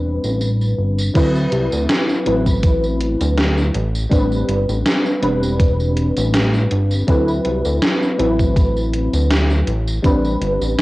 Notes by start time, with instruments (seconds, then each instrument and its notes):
Already playing: analog synth bass E1, fm electric piano G3 C4 D4 B4
0.24 analog synth bass A1, tambourine
0.41 tambourine
0.61 tambourine
0.78 analog synth bass G1
0.98 tambourine
1.14 analog synth bass D2, fm electric piano F#3 C4 E4 B4, kick, closed hi-hat, crash, tambourine
1.35 tambourine
1.52 analog synth bass C2, closed hi-hat
1.72 analog synth bass D2, tambourine
1.89 snare, closed hi-hat, tambourine
2.09 tambourine
2.25 analog synth bass A1, fm electric piano F#3 C4 E4 B4, closed hi-hat
2.46 kick, tambourine
2.63 kick, closed hi-hat, tambourine
2.84 tambourine
3.01 closed hi-hat
3.21 analog synth bass D2, closed hi-hat, tambourine
3.38 snare, closed hi-hat, tambourine
3.58 tambourine
3.75 analog synth bass A1, closed hi-hat
3.95 tambourine
4.09 analog synth bass A1, fm electric piano G3 C4 D4 B4, kick, closed hi-hat, tambourine
4.32 tambourine
4.49 analog synth bass G1, closed hi-hat
4.69 analog synth bass A1, tambourine
4.86 snare, closed hi-hat, tambourine
5.06 tambourine
5.22 analog synth bass E1, fm electric piano G3 C4 D4 B4, closed hi-hat
5.43 tambourine
5.60 kick, closed hi-hat, tambourine
5.80 tambourine
5.97 closed hi-hat
6.17 analog synth bass A1, closed hi-hat, tambourine
6.34 snare, closed hi-hat, tambourine
6.54 tambourine
6.71 analog synth bass G1, closed hi-hat
6.91 tambourine
7.07 analog synth bass D2, fm electric piano F#3 C4 E4 B4, kick, closed hi-hat, tambourine
7.28 tambourine
7.45 analog synth bass C2, closed hi-hat
7.65 analog synth bass D2, tambourine
7.82 snare, closed hi-hat, tambourine
8.02 tambourine
8.18 analog synth bass A1, fm electric piano F#3 C4 E4 B4, closed hi-hat
8.39 kick, tambourine
8.56 kick, closed hi-hat, tambourine
8.77 tambourine
8.93 closed hi-hat
9.13 analog synth bass D2, closed hi-hat, tambourine
9.30 snare, closed hi-hat, tambourine
9.50 tambourine
9.67 analog synth bass A1, closed hi-hat
9.88 tambourine
10.02 analog synth bass A1, fm electric piano G3 C4 D4 B4, kick, closed hi-hat, tambourine
10.24 tambourine
10.41 analog synth bass G1, closed hi-hat
10.61 analog synth bass A1, tambourine
10.79 snare, closed hi-hat, tambourine